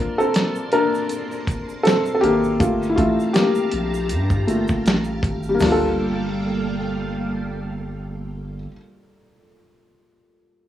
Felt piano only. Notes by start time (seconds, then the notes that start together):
Already playing: A#3 C4 D4 F4 A4 A#4
0.18 C4 A4
0.73 D4 A#4
1.83 C4 A4
2.14 A4
2.21 A#3 G4
2.59 A3 A#3 F4
2.90 E4
2.96 A3 F4
3.33 A#3 G4
4.47 A3 A#3 F4
5.49 G3
5.55 A#3
5.60 D4
5.66 F4
5.72 A4